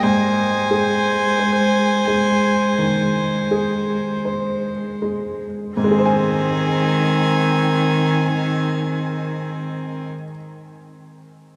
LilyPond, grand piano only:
\new Staff \with { instrumentName = "Grand piano" } { \time 4/4 \key aes \major \tempo 4 = 41 aes,8 aes'8 c''8 aes8 ees8 aes'8 c''8 aes8 | <aes, aes aes' c'' aes''>1 | }